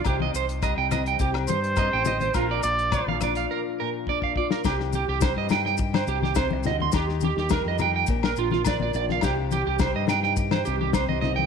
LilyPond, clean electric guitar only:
\new Staff \with { instrumentName = "Clean electric guitar" } { \time 4/4 \key c \minor \tempo 4 = 105 g'16 ees''16 c''16 r16 ees''16 g''16 ees''16 g''16 g'16 r16 c''16 r16 ees''16 g''16 ees''16 c''16 | f'16 d''16 r8 d''16 f''16 d''16 f''16 bes'16 r16 bes'16 r16 d''16 f''16 d''16 bes'16 | g'16 r16 g'16 g'16 c''16 ees''16 g''16 g''16 r16 c''16 g'16 g'16 c''16 r16 ees''16 c'''16 | g'16 r16 g'16 g'16 bes'16 ees''16 g''16 g''16 r16 bes'16 f'16 f'16 d''16 d''16 d''16 f''16 |
g'16 r16 g'16 g'16 c''16 ees''16 g''16 g''16 r16 c''16 g'16 g'16 c''16 ees''16 ees''16 g''16 | }